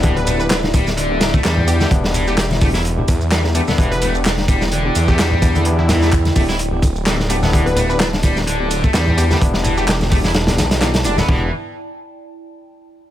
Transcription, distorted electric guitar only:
X:1
M:4/4
L:1/16
Q:"Swing 16ths" 1/4=128
K:Em
V:1 name="Distorted electric guitar"
E, z A, z D z G, z D,3 A, G,4 | z2 E, A, z2 A, E z4 E, z A, B, | E, z A, z D z G, z D,3 A, G,4 | z2 E, A, z2 A, E z4 E, z A, B, |
E, z A, z D z G, z D,3 A, G,4 | z2 E, A, z2 A, E z4 E, z D B, | E,2 z12 z2 |]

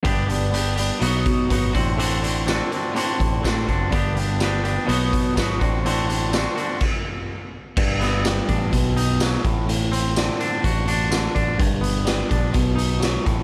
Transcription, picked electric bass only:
X:1
M:4/4
L:1/8
Q:1/4=125
K:G
V:1 name="Picked electric bass" clef=bass
G,,,4 B,,, B,, _A,,, =A,,,- | A,,,3 z2 A,,, A,, F,,, | G,,,4 B,,, B,, _A,,, =A,,,- | A,,,3 z4 z |
G,,,3 A,,, B,,,3 A,,,- | A,,,3 z A,,,3 A,,, | G,,,3 _B,,, =B,,,3 A,,, |]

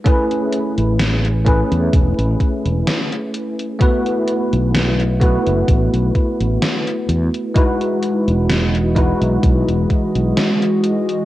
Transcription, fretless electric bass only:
X:1
M:4/4
L:1/16
Q:"Swing 16ths" 1/4=64
K:E
V:1 name="Fretless electric bass" clef=bass
z3 A,,,4 E,, E,,, A,,, z E,,, z4 | z3 B,,,4 F,,, A,,, B,,, z A,,, z2 E,, z | z3 E,,,4 B,,, B,,, E,,, z B,,, z4 |]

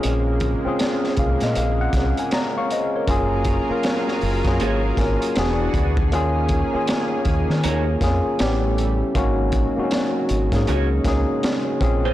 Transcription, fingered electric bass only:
X:1
M:4/4
L:1/16
Q:"Swing 16ths" 1/4=79
K:Abmix
V:1 name="Fingered electric bass" clef=bass
B,,,3 z3 C,, B,, B,,,2 C,, z4 z | G,,,3 z3 G,,, G,, A,,,2 A,,, z =E,,,2 =D,,2 | E,,3 z3 E,, E, E,,2 F,, z =A,,,4 | A,,,3 z3 A,,, A,, D,,2 D,, z3 B,,,2 |]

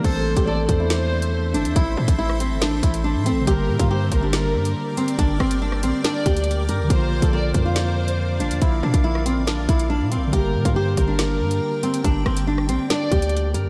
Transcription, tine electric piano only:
X:1
M:4/4
L:1/8
Q:1/4=140
K:Aphr
V:1 name="Tine electric piano"
[E,A,CA]8- | [E,A,CA]6- [E,A,CA] [E,A,CA] | [D,G,B,G]8- | [D,G,B,G]8 |
[D,F,B,F]8- | [D,F,B,F]8 | [D,G,B,G]8- | [D,G,B,G]8 |]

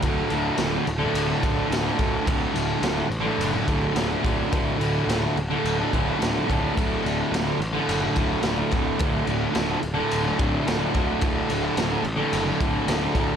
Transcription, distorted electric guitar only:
X:1
M:4/4
L:1/16
Q:1/4=107
K:Clyd
V:1 name="Distorted electric guitar" clef=bass
[D,,A,,D,]2 [D,,A,,D,]2 [D,,A,,D,] [A,,D,]2 [A,,D,]2 [A,,D,] [D,,A,,D,]2 [D,,A,,D,] [A,,D,] [D,,A,,D,]2 | [D,,A,,D,]2 [D,,A,,D,]2 [D,,A,,D,] [A,,D,]2 [A,,D,]2 [A,,D,] [D,,A,,D,]2 [D,,A,,D,] [A,,D,] [D,,A,,D,]2 | [D,,A,,D,]2 [D,,A,,D,]2 [D,,A,,D,] [A,,D,]2 [A,,D,]2 [A,,D,] [D,,A,,D,]2 [D,,A,,D,] [A,,D,] [D,,A,,D,]2 | [D,,A,,D,]2 [D,,A,,D,]2 [D,,A,,D,] [A,,D,]2 [A,,D,]2 [A,,D,] [D,,A,,D,]2 [D,,A,,D,] [A,,D,] [D,,A,,D,]2 |
[D,,A,,D,]2 [D,,A,,D,]2 [D,,A,,D,] [A,,D,]2 [A,,D,]2 [A,,D,] [D,,A,,D,]2 [D,,A,,D,] [A,,D,] [D,,A,,D,]2 | [D,,A,,D,]2 [D,,A,,D,]2 [D,,A,,D,] [A,,D,]2 [A,,D,]2 [A,,D,] [D,,A,,D,]2 [D,,A,,D,] [A,,D,] [D,,A,,D,]2 |]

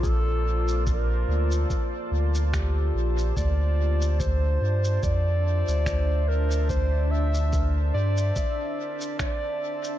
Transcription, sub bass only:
X:1
M:4/4
L:1/16
Q:"Swing 16ths" 1/4=72
K:Dm
V:1 name="Sub bass" clef=bass
B,,,6 D,,2 z2 D,,4 B,,,2 | D,,6 G,,2 F,,3 D,,4- D,,- | D,,6 G,,2 z8 |]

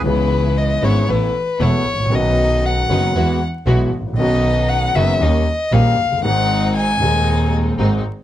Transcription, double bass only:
X:1
M:4/4
L:1/8
Q:1/4=116
K:C#m
V:1 name="Double bass" clef=bass
C,,3 G,,, A,,, z E,,, A,,, | B,,,3 F,,, E,, z B,,, A,,, | B,,,3 F,,, D,, z ^A,,, F,,, | G,,,3 D,,3 G,,, z |]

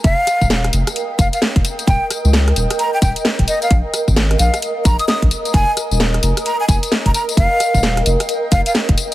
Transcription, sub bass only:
X:1
M:4/4
L:1/16
Q:"Swing 16ths" 1/4=131
K:Fm
V:1 name="Sub bass" clef=bass
F,,, z2 E,,,3 F,,, z3 F,,, z2 F,,, z2 | E,,, z2 D,,3 E,,, z3 E,,, z2 E,,, z2 | B,,, z2 A,,,3 B,,, z3 B,,, z2 B,,, z2 | F,,, z2 E,,,3 F,,, z3 F,,, z2 F,,, z2 |
F,,, z2 E,,,3 F,,, z3 F,,, z2 F,,, z2 |]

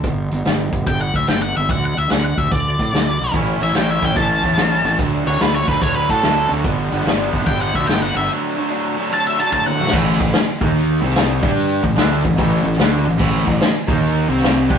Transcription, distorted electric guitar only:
X:1
M:4/4
L:1/8
Q:"Swing" 1/4=146
K:D
V:1 name="Distorted electric guitar" clef=bass
z8 | z8 | [A,,E,A,CE] [A,,E,A,CE] [A,,E,A,CE] [A,,E,A,CE] [A,,E,A,CE] [A,,E,A,CE] [A,,E,A,CE] [A,,E,A,CE] | [D,F,A,D] [D,F,A,D] [D,F,A,D] [D,F,A,D] [D,F,A,D] [D,F,A,D] [D,F,A,D] [D,F,A,D] |
[G,,D,G,B,D] [G,,D,G,B,D] [G,,D,G,B,D] [G,,D,G,B,D] [G,,D,G,B,D] [G,,D,G,B,D] [G,,D,G,B,D] [G,,D,G,B,D] | [D,F,A,D] [D,F,A,D] [D,F,A,D] [D,F,A,D] [D,F,A,D] [D,F,A,D] [D,F,A,D] [D,F,A,D] | [A,,E,A,] [A,,E,] z [^D,^A,^D]2 [=C,G,=C]2 [G,=DG]- | [G,DG] [A,,E,] [D,A,D] [A,,E,] [A,,E,A,] [A,,E,] [D,A,D] [A,,E,] |
[A,,E,A,] [A,,E,] z [^D,^A,^D]2 [=C,G,=C]2 [G,=DG] |]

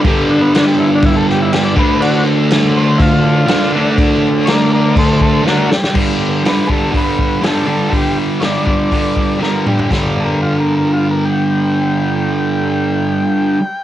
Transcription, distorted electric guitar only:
X:1
M:4/4
L:1/8
Q:1/4=122
K:Dmix
V:1 name="Distorted electric guitar" clef=bass
[G,,D,G,]6- [G,,D,G,] [D,A,D]- | [D,A,D]6 [D,A,D] [D,A,D]- | [D,A,D]6 [D,A,D] z | [G,,D,G,]2 [G,,D,G,] [G,,D,G,] [G,,D,G,]2 [G,,D,G,] [G,,D,G,] |
[G,,D,G,]2 [G,,D,G,] [G,,D,G,] [G,,D,G,]2 [G,,D,G,] [G,,D,G,] | [G,,D,G,]8- | [G,,D,G,]8 |]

